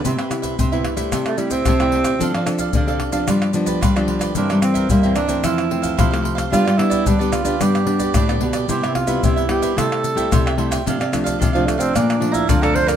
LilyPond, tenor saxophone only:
\new Staff \with { instrumentName = "Tenor saxophone" } { \time 4/4 \key c \major \tempo 4 = 111 r2 r16 a16 g16 c'4~ c'16~ | c'16 r2. r8. | d'8 c'8 bes8 d'8 e'4. r8 | f'8 e'8 d'8 f'8 g'4. r8 |
g'8 f'8 e'8 g'8 a'4. r8 | r4 r16 f16 a16 c'16 d'8. e'16 f'16 a'16 c''16 bes'16 | }